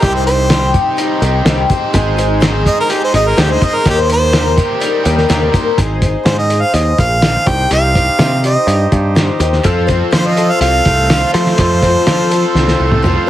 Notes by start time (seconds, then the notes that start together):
Already playing: D#4 G4 C5
0.02 C2 C3 G3 C4 D#4 G4, kick, closed hi-hat
0.15 C5
0.26 C4 D#4 G4 C5, closed hi-hat
0.49 C3 G3 C4 D#4 G4 C5, snare, closed hi-hat
0.73 G4, kick, closed hi-hat
0.97 G3 C4 D#4 G4, closed hi-hat
1.20 C2 C4 D#4 G4, closed hi-hat
1.45 C2 C3 G3 C4 D#4 G4, snare, closed hi-hat
1.69 C4 D#4 G4 C5, kick, closed hi-hat
1.93 G#1 G#2 D#3 G#3 C4 D#4 G#4 C5, kick, closed hi-hat
2.17 G#3 C4 D#4 G#4, closed hi-hat
2.40 G#2 D#3 G#3 C4 D#4 G#4 C5, snare, closed hi-hat
2.65 G#4 D#5, kick, closed hi-hat
2.80 A#4
2.89 G#3 C4 D#4 G4, closed hi-hat
2.93 G#4
3.04 C5
3.12 G#1 C4 D#4 G#4 D#5, closed hi-hat
3.16 G#3
3.28 A#4
3.37 D2 G#2 D#3 G#3 C4 D#4 G4 G#4, snare, closed hi-hat
3.52 C5
3.61 C4 D#4 G#4 C5 D#5, kick, closed hi-hat
3.65 G#3
3.76 A#4
3.85 D#2 C3 D#3 A#3 D#4 G4 A#4 C5, kick, closed hi-hat
3.89 G4
4.01 C5
4.09 A#3 D#4 G4 A#4 C5, closed hi-hat
4.32 C3 D#3 A#3 D#4 G4 A#4 C5, snare, closed hi-hat
4.57 G4, kick, closed hi-hat
4.80 G3 A#3 D#4 G4 A#4, closed hi-hat
5.04 D#2 A#3 D#4 G4 A#4, closed hi-hat
5.18 snare
5.29 D#2 C3 D#3 G3 A#3 D#4 G4 A#4, snare, closed hi-hat
5.52 D#4 G4 A#4 C5, kick, closed hi-hat
5.57 A#3
5.78 G#1 G#3 C4 D#4 G#4 C5, kick, closed hi-hat
6.02 D#4 G#4 C5, kick, closed hi-hat
6.25 G#2 C4 D#4 G#4 C5, snare, closed hi-hat
6.38 D#5
6.49 D#4 G#4 C5, closed hi-hat
6.61 F5
6.74 D#2 D#5, closed hi-hat
6.98 A#1 F5, kick, closed hi-hat
7.21 C4 D#4 G#4 C5, snare, closed hi-hat
7.46 C2 D#4 G4 C5 G5, kick, closed hi-hat
7.71 C2 C3 C4 D#4 G4 C5 F5, closed hi-hat
7.94 D#4 G4 C5, kick, closed hi-hat
8.18 C3 C4 D#4 G4 C5, snare, closed hi-hat
8.42 D#4 G4 C5 D#5, closed hi-hat
8.67 G2, closed hi-hat
8.92 G2, kick, closed hi-hat
9.15 C4 D#4 G4 C5, snare, closed hi-hat
9.39 D#2 D#4 G4 C5, closed hi-hat
9.53 snare
9.63 F2 F3 F4 A4 C5, kick, closed hi-hat
9.87 C4 F4 A4 C5, kick, closed hi-hat
10.11 F3 F4 A4 C5, snare, closed hi-hat
10.15 C5
10.27 D#5
10.36 F4 A4 C5, closed hi-hat
10.51 F5
10.61 C2 C4 F5, closed hi-hat
10.85 C2 A3, kick, closed hi-hat
11.09 F3 F4 A4 C5, snare, closed hi-hat
11.33 F3 A3 F4 A4 C5, closed hi-hat
11.46 snare
11.58 F2 F3 F4 A4 C5, kick, closed hi-hat
11.82 C4 F4 A4 C5, kick, closed hi-hat
12.05 F3 F4 A4 C5, snare, closed hi-hat
12.30 F4 A4 C5, closed hi-hat
12.55 C2 C4, snare
12.68 snare
12.80 C2 A3
12.92 high tom
13.02 F3 F4 A4 C5, mid tom